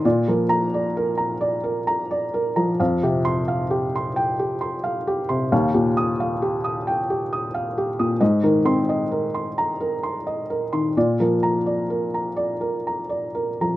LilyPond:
<<
  \new Staff \with { instrumentName = "Felt piano" } { \time 6/8 \key bes \mixolydian \tempo 4. = 44 << { r8 bes''8 r2 | r8 c'''8 r2 | r8 ees'''8 r2 | r8 c'''8 r2 |
r8 bes''8 r2 | } \\ { d''16 bes'8 d''16 bes'16 bes''16 d''16 bes'16 bes''16 d''16 bes'16 bes''16 | f''16 g'8 f''16 g'16 c'''16 g''16 g'16 c'''16 f''16 g'16 c'''16 | f''16 g'8 f''16 g'16 ees'''16 g''16 g'16 ees'''16 f''16 g'16 ees'''16 | ees''16 bes'8 ees''16 bes'16 c'''16 bes''16 bes'16 c'''16 ees''16 bes'16 c'''16 |
d''16 bes'8 d''16 bes'16 bes''16 d''16 bes'16 bes''16 d''16 bes'16 bes''16 | } >> }
  \new Staff \with { instrumentName = "Felt piano" } { \clef bass \time 6/8 \key bes \mixolydian bes,16 f8 r2 f16 | f,16 c8 r2 c16 | ees,16 bes,8 r2 bes,16 | aes,16 ees16 c'8 r4. r16 ees16 |
bes,16 f8 r2 f16 | }
>>